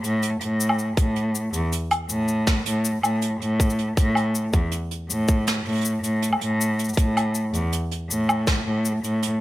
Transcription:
0.04 cello A2, closed hi-hat, cabasa
0.23 closed hi-hat, cabasa
0.41 cello A2, closed hi-hat
0.60 cabasa
0.69 low woodblock
0.79 cabasa
0.97 cello A2, kick, closed hi-hat, cabasa
1.16 closed hi-hat
1.35 cabasa
1.53 cello E2, closed hi-hat, cabasa
1.72 closed hi-hat, cabasa
1.91 closed hi-hat, low woodblock
2.09 cello A2, cabasa
2.28 cabasa
2.47 kick, snare, cabasa
2.66 cello A2, closed hi-hat
2.85 cabasa
3.03 cello A2, closed hi-hat, cabasa, low woodblock
3.22 closed hi-hat, cabasa
3.41 cello A2, closed hi-hat
3.60 kick, cabasa
3.70 cabasa
3.79 closed hi-hat
3.97 cello A2, kick, closed hi-hat, cabasa
4.15 closed hi-hat, low woodblock
4.35 cabasa
4.53 cello E2, kick, closed hi-hat, cabasa
4.71 closed hi-hat, cabasa
4.91 closed hi-hat
5.10 cello A2, cabasa
5.28 kick, cabasa
5.47 snare, closed hi-hat, cabasa
5.65 cello A2, closed hi-hat
5.69 closed hi-hat
5.72 closed hi-hat
5.75 closed hi-hat
5.78 closed hi-hat
5.81 closed hi-hat, cabasa
6.03 cello A2, closed hi-hat, cabasa
6.22 closed hi-hat, cabasa
6.33 low woodblock
6.41 cello A2, closed hi-hat
6.61 cabasa
6.79 closed hi-hat, cabasa
6.84 cabasa
6.89 cabasa
6.93 cello A2, kick, closed hi-hat, cabasa
6.98 cabasa
7.17 closed hi-hat, low woodblock
7.35 cabasa
7.53 cello E2, closed hi-hat, cabasa
7.73 closed hi-hat, cabasa
7.91 closed hi-hat
8.10 cello A2, cabasa
8.29 cabasa, low woodblock
8.47 kick, snare, closed hi-hat, cabasa
8.66 cello A2
8.85 cabasa
9.04 cello A2, closed hi-hat, cabasa
9.22 closed hi-hat, cabasa

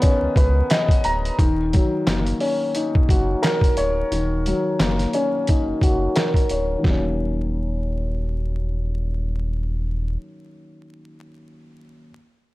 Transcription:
Already playing: grand piano B2 D#3 B3 A#4 C#5 D#5 A#5
0.02 grand piano C#4, kick, closed hi-hat
0.22 sub bass C#2
0.36 sub bass C#2, grand piano B4, kick, closed hi-hat
0.70 grand piano D#5, snare, clap, closed hi-hat
0.89 kick, closed hi-hat
1.04 sub bass D1, grand piano A#5, closed hi-hat
1.25 closed hi-hat
1.39 sub bass D#1, grand piano D#3, kick, closed hi-hat
1.73 grand piano F#3, kick, closed hi-hat
2.07 sub bass F#1, grand piano A#3, snare, clap, closed hi-hat
2.27 closed hi-hat
2.40 grand piano C#4, open hi-hat
2.75 grand piano D#4, closed hi-hat
2.95 sub bass F#1, kick
3.09 sub bass F#1, grand piano F#4, kick, closed hi-hat
3.42 grand piano A#4, snare, clap, closed hi-hat
3.61 kick, closed hi-hat
3.77 sub bass D1, grand piano C#5, closed hi-hat
4.12 sub bass D#1, grand piano D#3, closed hi-hat
4.46 grand piano F#3, closed hi-hat
4.80 sub bass F#1, grand piano A#3, snare, clap, closed hi-hat
4.99 snare, closed hi-hat
5.13 grand piano C#4, closed hi-hat
5.47 grand piano D#4, kick, closed hi-hat
5.68 sub bass F#1
5.82 sub bass F#1, grand piano F#4, kick, closed hi-hat
6.16 grand piano A#4, snare, clap, closed hi-hat
6.34 kick, closed hi-hat
6.49 sub bass D1, grand piano C#5, closed hi-hat
6.78 grand piano D#3 F#3
6.84 sub bass D#1, grand piano A#3, kick, snare
6.90 grand piano C#4

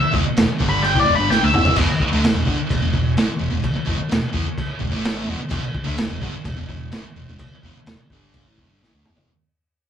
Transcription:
Already playing: lead electric guitar E5
0.01 muted distorted electric guitar stroke, muted fingered electric bass stroke
0.12 fingered electric bass E1, distorted electric guitar E2 B2, kick
0.24 muted distorted electric guitar stroke
0.37 fingered electric bass E1, distorted electric guitar E2 B2, snare, crash
0.49 muted distorted electric guitar stroke
0.59 fingered electric bass G1, distorted electric guitar G2 D3 G3, kick
0.69 lead electric guitar B5
0.83 lead electric guitar G5, crash
0.94 fingered electric bass A1, distorted electric guitar A2 E3, kick
1.00 lead electric guitar D5
1.06 fingered electric bass E1, distorted electric guitar E2 B2
1.15 fingered electric bass G1, distorted electric guitar G2 D3, lead electric guitar B5
1.29 fingered electric bass A1, distorted electric guitar A2 E3, lead electric guitar G5, snare
1.40 fingered electric bass D2, distorted electric guitar D3 A3, lead electric guitar E5
1.52 fingered electric bass E1, distorted electric guitar E2 B2 E3, mid tom
1.65 floor tom
1.76 fingered electric bass E1, distorted electric guitar E2 B2, kick, crash
1.89 muted distorted electric guitar stroke, muted fingered electric bass stroke
2.00 kick
2.12 fingered electric bass D2, distorted electric guitar D3 A3
2.23 fingered electric bass E1, distorted electric guitar E2 B2, snare, crash
2.35 fingered electric bass E1, distorted electric guitar E2 B2
2.45 fingered electric bass G1, distorted electric guitar G2 D3, kick
2.58 muted distorted electric guitar stroke
2.69 fingered electric bass E1, distorted electric guitar E2 B2, kick, crash
2.81 fingered electric bass E1, distorted electric guitar E2 B2
2.94 fingered electric bass E1, distorted electric guitar E2 B2, kick
3.16 fingered electric bass A1, distorted electric guitar A2 E3, snare, crash
3.28 muted distorted electric guitar stroke, muted fingered electric bass stroke
3.39 fingered electric bass E1, distorted electric guitar E2 B2
3.51 fingered electric bass E1, distorted electric guitar E2 B2
3.63 muted distorted electric guitar stroke, kick, crash
3.75 muted distorted electric guitar stroke, muted fingered electric bass stroke
3.86 fingered electric bass E1, distorted electric guitar E2 B2, kick
3.98 muted distorted electric guitar stroke, muted fingered electric bass stroke
4.09 fingered electric bass E1, distorted electric guitar E2 B2, snare, crash
4.22 muted distorted electric guitar stroke
4.33 fingered electric bass E2, distorted electric guitar E3 B3, kick
4.45 muted distorted electric guitar stroke, muted fingered electric bass stroke
4.58 kick, crash
4.79 fingered electric bass E1, distorted electric guitar E2 B2, kick
4.91 fingered electric bass A1, distorted electric guitar A2 E3 A3
5.04 snare, crash
5.27 fingered electric bass E1, distorted electric guitar E2 B2
5.38 muted distorted electric guitar stroke, muted fingered electric bass stroke
5.49 fingered electric bass E1, distorted electric guitar E2 B2, kick, crash
5.61 muted distorted electric guitar stroke
5.75 kick
5.84 fingered electric bass D2, distorted electric guitar D3 A3
5.97 fingered electric bass E1, distorted electric guitar E2 B2, snare, crash
6.09 fingered electric bass E1, distorted electric guitar E2 B2
6.22 fingered electric bass G1, distorted electric guitar G2 D3, kick
6.34 muted distorted electric guitar stroke
6.44 fingered electric bass E1, distorted electric guitar E2 B2, kick, crash
6.57 fingered electric bass E1, distorted electric guitar E2 B2
6.69 fingered electric bass E1, distorted electric guitar E2 B2, kick
6.92 fingered electric bass A1, distorted electric guitar A2 E3, snare, crash
7.04 muted fingered electric bass stroke, muted distorted electric guitar stroke
7.15 fingered electric bass E1, distorted electric guitar E2 B2
7.28 fingered electric bass E1, distorted electric guitar E2 B2
7.39 muted distorted electric guitar stroke, kick, crash
7.51 muted fingered electric bass stroke, muted distorted electric guitar stroke
7.63 fingered electric bass E1, distorted electric guitar E2 B2, kick
7.77 muted distorted electric guitar stroke
7.86 fingered electric bass E1, distorted electric guitar E2 B2, snare, crash
8.00 muted distorted electric guitar stroke
8.10 fingered electric bass G1, distorted electric guitar G2 D3 G3, kick
8.34 kick, crash
8.45 fingered electric bass A1, distorted electric guitar A2 E3
8.58 fingered electric bass E1, distorted electric guitar E2 B2, kick
8.69 fingered electric bass G1, distorted electric guitar G2 D3
8.81 fingered electric bass A1, distorted electric guitar A2 E3, snare
8.92 fingered electric bass D2, distorted electric guitar D3 A3
9.04 fingered electric bass E1, distorted electric guitar E2 B2 E3, mid tom
9.17 floor tom

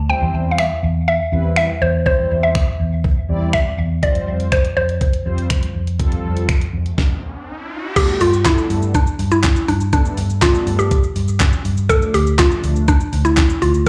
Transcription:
Already playing: fingered electric bass D2
0.09 analog polysynth G3 C4 E4 C5, synth pluck G5
0.22 fingered electric bass E2
0.34 fingered electric bass E2
0.51 synth pluck F5
0.58 synth pluck E5, finger snap
0.83 fingered electric bass E2
1.08 synth pluck E5
1.32 fingered electric bass E2, analog polysynth G3 C4 E4 B4
1.56 synth pluck E5, finger snap
1.81 fingered electric bass E2, synth pluck C5
2.06 analog polysynth G3 C4 E4 C5, synth pluck C5, kick
2.18 fingered electric bass E2
2.31 fingered electric bass E2
2.43 synth pluck E5
2.55 finger snap, kick
2.80 fingered electric bass E2
3.04 kick
3.29 fingered electric bass E2, analog polysynth G3 C4 E4 D5
3.53 synth pluck E5, finger snap, kick
3.78 fingered electric bass E2
4.03 analog polysynth G3 C4 F4 C5, synth pluck D5, kick, closed hi-hat
4.15 fingered electric bass F2, closed hi-hat
4.27 fingered electric bass F2
4.40 closed hi-hat
4.52 synth pluck C5, finger snap, kick, closed hi-hat
4.65 closed hi-hat
4.77 fingered electric bass F2, synth pluck C5
4.89 closed hi-hat
5.01 kick, closed hi-hat
5.13 closed hi-hat
5.25 fingered electric bass F2, analog polysynth G3 C4 F4 C5
5.38 closed hi-hat
5.50 finger snap, kick, closed hi-hat
5.63 closed hi-hat
5.75 fingered electric bass F2
5.87 closed hi-hat
5.99 analog polysynth G3 C4 F4 A4, kick, closed hi-hat, riser
6.12 fingered electric bass F2, closed hi-hat
6.24 fingered electric bass F2
6.37 closed hi-hat
6.49 finger snap, kick, closed hi-hat
6.61 closed hi-hat
6.73 fingered electric bass F2
6.86 closed hi-hat
6.98 kick, snare
7.96 analog polysynth G3 A3 B3 D4 A4, synth pluck G4, kick, closed hi-hat, crash, shaker
8.09 shaker
8.21 fingered electric bass G2, synth pluck F4, open hi-hat, shaker
8.33 shaker
8.45 analog polysynth G3 A3 B3 D4 A4, synth pluck E4, kick, snare, clap, closed hi-hat, shaker
8.58 shaker
8.70 fingered electric bass G2, open hi-hat, shaker
8.82 shaker
8.95 synth pluck D4, kick, closed hi-hat, shaker
9.07 shaker
9.19 fingered electric bass G2, open hi-hat, shaker
9.31 synth pluck E4, shaker
9.44 kick, snare, clap, closed hi-hat, shaker
9.56 shaker
9.68 fingered electric bass G2, synth pluck D4, open hi-hat, shaker
9.81 shaker
9.93 analog polysynth G3 A3 B3 D4 A4, synth pluck D4, kick, closed hi-hat, shaker
10.05 shaker
10.17 fingered electric bass G2, open hi-hat, shaker
10.30 shaker
10.42 analog polysynth G3 A3 B3 D4 A4, synth pluck F4, kick, snare, clap, closed hi-hat, shaker
10.55 shaker
10.67 fingered electric bass G2, open hi-hat, shaker
10.79 synth pluck G4, shaker
10.91 kick, closed hi-hat, shaker
11.04 shaker
11.16 fingered electric bass G2, open hi-hat, shaker
11.28 shaker
11.40 kick, snare, clap, closed hi-hat, shaker
11.53 shaker
11.65 fingered electric bass G2, open hi-hat, shaker
11.77 shaker
11.89 analog polysynth F3 A3 D4, synth pluck A4, kick, closed hi-hat, shaker
12.02 shaker
12.14 fingered electric bass D2, synth pluck G4, open hi-hat, shaker
12.27 shaker
12.38 analog polysynth F3 A3 D4, synth pluck F4, kick, snare, clap, closed hi-hat, shaker
12.51 shaker
12.63 fingered electric bass D2, open hi-hat, shaker
12.76 shaker
12.88 synth pluck D4, kick, closed hi-hat, shaker
13.00 shaker
13.13 fingered electric bass D2, open hi-hat, shaker
13.25 synth pluck E4, shaker
13.37 kick, snare, clap, closed hi-hat, shaker
13.50 shaker
13.62 fingered electric bass D2, synth pluck F4, open hi-hat, shaker
13.74 shaker

